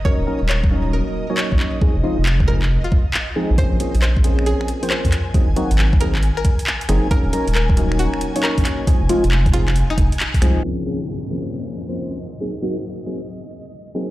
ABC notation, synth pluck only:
X:1
M:4/4
L:1/16
Q:"Swing 16ths" 1/4=136
K:Ebdor
V:1 name="Synth pluck"
d2 z2 d2 z2 B2 z2 d2 z2 | z6 B2 z F6 z | c2 z2 c2 z2 A2 z2 c2 z2 | z6 B2 z B6 z |
B2 z2 B2 z2 G2 z2 B2 z2 | z6 F2 z E6 z | z16 | z16 |]